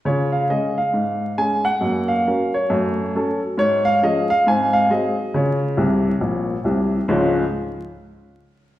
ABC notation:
X:1
M:4/4
L:1/8
Q:"Swing" 1/4=136
K:Db
V:1 name="Upright piano"
d f e f3 a g- | g f2 d4 z | d f e f a f e2 | d6- d z |
[D,,A,,F,A,DF] z6 z |]
V:2 name="Upright piano" clef=bass
[D,F]2 [A,DA]2 A,,2 [A,DA]2 | [G,,B,]2 [G,DB]2 [G,,=A,]2 [G,D=A]2 | A,,2 [F,DA]2 [A,,C]2 [G,CA]2 | [D,F]2 [C,,C,]2 [B,,,B,,]2 [C,,C,]2 |
z8 |]